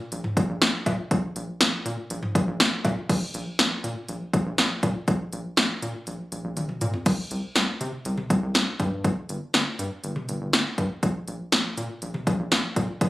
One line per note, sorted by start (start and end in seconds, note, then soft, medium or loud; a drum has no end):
0.12 0.23 A#1 loud
0.12 closed hi-hat medium
0.24 mid tom loud
0.37 0.48 A#1 loud
0.37 kick loud
0.37 closed hi-hat medium
0.49 0.60 A#1 loud
0.61 0.73 A#1 loud
0.61 snare loud
0.61 closed hi-hat medium
0.86 0.97 A#2 loud
0.86 kick loud
0.86 closed hi-hat medium
0.86 cowbell medium
1.11 1.22 A#1 loud
1.11 kick loud
1.11 closed hi-hat medium
1.36 1.47 A#1 loud
1.36 closed hi-hat medium
1.61 1.72 A#1 loud
1.61 snare loud
1.61 closed hi-hat medium
1.85 1.97 A#2 loud
1.85 closed hi-hat medium
2.10 2.21 A#1 loud
2.10 closed hi-hat medium
2.23 mid tom loud
2.35 2.46 A#1 loud
2.35 kick loud
2.35 closed hi-hat medium
2.47 2.59 A#1 loud
2.60 2.71 A#1 loud
2.60 snare loud
2.60 closed hi-hat medium
2.85 2.96 A#2 loud
2.85 kick loud
2.85 closed hi-hat medium
2.85 cowbell medium
3.09 3.21 A#1 loud
3.09 kick loud
3.09 closed hi-hat medium
3.09 crash medium
3.34 3.45 A#1 loud
3.34 closed hi-hat medium
3.59 3.70 A#1 loud
3.59 snare loud
3.59 closed hi-hat medium
3.84 3.95 A#2 loud
3.84 closed hi-hat medium
4.09 4.20 A#1 loud
4.09 closed hi-hat medium
4.33 4.45 A#1 loud
4.33 kick loud
4.33 closed hi-hat medium
4.46 4.57 A#1 loud
4.58 4.69 A#1 loud
4.58 snare loud
4.58 closed hi-hat medium
4.83 4.94 A#2 loud
4.83 kick medium
4.83 closed hi-hat medium
5.08 5.19 A#1 loud
5.08 kick loud
5.08 closed hi-hat medium
5.33 5.44 A#1 loud
5.33 closed hi-hat medium
5.57 5.69 A#1 loud
5.57 snare loud
5.57 closed hi-hat medium
5.82 5.93 A#2 loud
5.82 closed hi-hat medium
6.07 6.18 A#1 loud
6.07 closed hi-hat medium
6.32 6.43 A#1 loud
6.32 closed hi-hat medium
6.44 6.55 A#1 medium
6.57 6.68 A#1 loud
6.57 closed hi-hat medium
6.57 high tom medium
6.69 mid tom medium
6.81 6.92 A#2 loud
6.81 closed hi-hat medium
6.81 mid tom medium
6.94 floor tom medium
7.06 7.17 C2 loud
7.06 kick loud
7.06 closed hi-hat medium
7.06 crash medium
7.31 7.42 C2 loud
7.31 closed hi-hat medium
7.56 7.67 C2 loud
7.56 snare loud
7.56 closed hi-hat medium
7.81 7.92 C3 loud
7.81 closed hi-hat medium
8.05 8.16 C2 loud
8.05 closed hi-hat medium
8.18 mid tom medium
8.30 8.41 C2 loud
8.30 kick loud
8.30 closed hi-hat medium
8.43 8.54 C2 loud
8.55 8.66 C2 loud
8.55 snare loud
8.55 closed hi-hat medium
8.80 9.13 G2 loud
8.80 kick medium
8.80 closed hi-hat medium
9.04 kick loud
9.04 closed hi-hat medium
9.29 9.40 G1 loud
9.29 closed hi-hat medium
9.54 9.65 G1 loud
9.54 snare loud
9.54 closed hi-hat medium
9.79 9.90 G2 loud
9.79 closed hi-hat medium
10.04 10.15 G1 loud
10.04 closed hi-hat medium
10.16 mid tom medium
10.29 10.40 G1 loud
10.29 closed hi-hat medium
10.41 10.52 G1 loud
10.53 10.64 G1 loud
10.53 snare loud
10.53 closed hi-hat medium
10.78 10.89 G2 loud
10.78 kick medium
10.78 closed hi-hat medium
11.03 11.14 A#1 loud
11.03 kick loud
11.03 closed hi-hat medium
11.28 11.39 A#1 medium
11.28 closed hi-hat medium
11.52 11.64 A#1 loud
11.52 snare loud
11.52 closed hi-hat medium
11.77 11.88 A#2 loud
11.77 closed hi-hat medium
12.02 12.13 A#1 loud
12.02 closed hi-hat medium
12.14 mid tom medium
12.27 12.38 A#1 loud
12.27 kick loud
12.27 closed hi-hat medium
12.39 12.50 A#1 loud
12.52 12.63 A#1 loud
12.52 snare loud
12.52 closed hi-hat medium
12.76 12.88 A#2 loud
12.76 kick medium
12.76 closed hi-hat medium
13.01 13.09 A#1 loud
13.01 kick loud
13.01 closed hi-hat medium